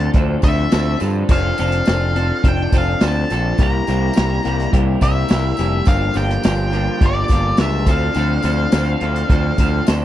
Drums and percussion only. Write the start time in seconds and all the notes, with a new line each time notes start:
0.00 closed hi-hat
0.13 kick, closed hi-hat, tambourine
0.42 kick, closed hi-hat, tambourine
0.72 snare, closed hi-hat, tambourine
1.00 closed hi-hat, tambourine
1.29 kick, crash, tambourine
1.58 closed hi-hat, tambourine
1.72 closed hi-hat
1.85 snare, closed hi-hat, tambourine
2.16 closed hi-hat
2.44 kick, closed hi-hat
2.72 kick, closed hi-hat, tambourine
3.00 snare, closed hi-hat, tambourine
3.30 snare, closed hi-hat, tambourine
3.58 kick, closed hi-hat, tambourine
3.87 closed hi-hat, tambourine
4.13 snare, closed hi-hat, tambourine
4.43 closed hi-hat, tambourine
4.60 closed hi-hat
4.73 kick, closed hi-hat
5.01 kick, closed hi-hat, tambourine
5.28 snare, closed hi-hat, tambourine
5.57 closed hi-hat, tambourine
5.85 kick, closed hi-hat, tambourine
6.14 closed hi-hat, tambourine
6.30 closed hi-hat
6.43 snare, closed hi-hat, tambourine
6.71 closed hi-hat, tambourine
7.01 kick, closed hi-hat
7.28 kick, closed hi-hat, tambourine
7.57 snare, closed hi-hat, tambourine
7.86 kick, snare, closed hi-hat, tambourine
8.14 closed hi-hat, tambourine
8.43 closed hi-hat, tambourine
8.72 snare, closed hi-hat, tambourine
9.00 closed hi-hat, tambourine
9.16 closed hi-hat
9.29 kick, closed hi-hat, tambourine
9.58 kick, closed hi-hat, tambourine
9.87 snare, closed hi-hat, tambourine